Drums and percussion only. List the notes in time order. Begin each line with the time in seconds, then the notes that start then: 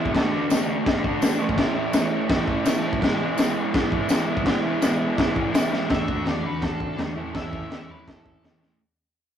0.06 kick
0.15 kick, snare, crash
0.50 snare, tambourine, crash
0.86 kick, snare, crash
1.04 kick
1.22 snare, tambourine, crash
1.49 kick
1.58 kick, snare, crash
1.93 snare, tambourine, crash
2.29 kick, snare, crash
2.48 kick
2.66 snare, tambourine, crash
2.93 kick
3.02 kick, snare, crash
3.38 snare, tambourine, crash
3.74 kick, snare, crash
3.92 kick
4.09 snare, tambourine, crash
4.37 kick
4.46 kick, snare, crash
4.82 snare, tambourine, crash
5.18 kick, snare, crash
5.36 kick
5.54 snare, tambourine, crash
5.73 snare
5.90 kick, snare, floor tom
6.08 kick, floor tom
6.26 snare, floor tom
6.44 floor tom
6.62 kick, snare, floor tom
6.80 kick, floor tom
6.99 snare, floor tom
7.16 floor tom
7.35 kick, snare, floor tom
7.53 kick, floor tom
7.71 snare, floor tom
7.89 floor tom
8.08 kick, snare, floor tom
8.26 kick, floor tom
8.44 snare, floor tom
8.63 snare